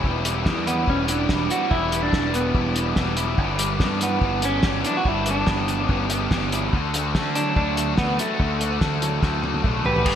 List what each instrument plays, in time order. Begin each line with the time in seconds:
Already playing: overdriven electric guitar E3 G3 E4
0.03 picked electric bass E1, overdriven electric guitar E2 E3 B3 E4 G4, kick
0.24 overdriven electric guitar G3 B3 E4 G4, closed hi-hat
0.45 picked electric bass E2, overdriven electric guitar E3 B3 D4 E4 G4, kick, snare
0.66 overdriven electric guitar E3, clean electric guitar B3, closed hi-hat
0.86 picked electric bass E1, overdriven electric guitar E3 G3 B3 E4 G4, clean electric guitar C#4, kick
1.07 overdriven electric guitar B3 D4 E4 G4, clean electric guitar D4, closed hi-hat
1.28 picked electric bass E1, overdriven electric guitar E3 G3 B3 E4 G4, kick, snare
1.49 overdriven electric guitar B3 E4 G4, clean electric guitar F#4, closed hi-hat
1.70 picked electric bass E1, overdriven electric guitar E2 E3 B3 E4 G4, clean electric guitar E4, kick
1.91 overdriven electric guitar G3 B3 E4 G4, closed hi-hat
2.03 clean electric guitar D4
2.11 picked electric bass E1, overdriven electric guitar E3 B3 D4 E4 G4, kick, snare
2.33 overdriven electric guitar E3, clean electric guitar B3, closed hi-hat
2.53 picked electric bass E1, overdriven electric guitar E3 G3 B3 E4 G4, kick
2.74 overdriven electric guitar B3 D4 E4 G4, closed hi-hat
2.95 picked electric bass E1, overdriven electric guitar E3 G3 B3 E4 G4, kick, snare
3.16 overdriven electric guitar B3 E4 G4, closed hi-hat
3.37 picked electric bass G1, overdriven electric guitar G2 B3 D4 G4, kick
3.58 overdriven electric guitar G3 D4 G4, closed hi-hat
3.78 picked electric bass G2, overdriven electric guitar B3 D4 G4, kick, snare
4.00 overdriven electric guitar E3, clean electric guitar B3, closed hi-hat
4.21 picked electric bass G1, overdriven electric guitar G3 B3 D4 G4, kick
4.42 overdriven electric guitar B3 D4 G4, clean electric guitar C#4, closed hi-hat
4.63 picked electric bass G1, overdriven electric guitar G3 B3 D4, kick, snare
4.67 overdriven electric guitar G4
4.84 clean electric guitar D4, overdriven electric guitar D4 E4 G4, closed hi-hat
4.97 clean electric guitar F#4
5.04 picked electric bass G1, overdriven electric guitar G2 B3 D4 G4, clean electric guitar E4, kick
5.25 overdriven electric guitar G3 D4 G4, closed hi-hat
5.30 clean electric guitar D4
5.46 picked electric bass G1, overdriven electric guitar B3 D4 G4, kick, snare
5.68 overdriven electric guitar E3, closed hi-hat
5.83 clean electric guitar C#4
5.88 picked electric bass G1, overdriven electric guitar G3 B3 D4 G4, kick
6.10 overdriven electric guitar B3 D4 G4, closed hi-hat
6.30 picked electric bass G1, overdriven electric guitar G3 B3 D4 G4, kick, snare
6.52 overdriven electric guitar D4 E4 G4, closed hi-hat
6.72 picked electric bass D2, overdriven electric guitar D3 A3 D4 F#4, kick
6.94 overdriven electric guitar A3 D4 F#4, closed hi-hat
7.15 picked electric bass D3, overdriven electric guitar A3 D4 F#4, kick, snare
7.35 overdriven electric guitar F#3, clean electric guitar D4, closed hi-hat
7.56 picked electric bass D2, overdriven electric guitar A3 D4 F#4, clean electric guitar D4, kick
7.76 overdriven electric guitar D4 F#4, closed hi-hat
7.97 picked electric bass D2, overdriven electric guitar A3 D4 F#4, clean electric guitar B3, kick, snare
8.18 clean electric guitar A3, overdriven electric guitar F#4, closed hi-hat
8.22 overdriven electric guitar D4
8.38 picked electric bass D2, overdriven electric guitar D3 A3 D4 F#4, kick
8.59 overdriven electric guitar A3 D4 F#4, closed hi-hat
8.79 picked electric bass D2, overdriven electric guitar A3 D4 F#4, kick, snare
9.02 overdriven electric guitar F#3, closed hi-hat
9.21 picked electric bass D2, overdriven electric guitar A3 D4 F#4, kick, snare
9.42 overdriven electric guitar D4 F#4, high tom
9.54 high tom
9.63 picked electric bass B1, overdriven electric guitar A3 D4 F#4, kick, mid tom
9.84 picked electric bass A1, overdriven electric guitar D4 F#4, trumpet G4, clean electric guitar B4, floor tom
9.96 floor tom
10.04 picked electric bass G1, overdriven electric guitar G2 B3 D4 G4, kick, crash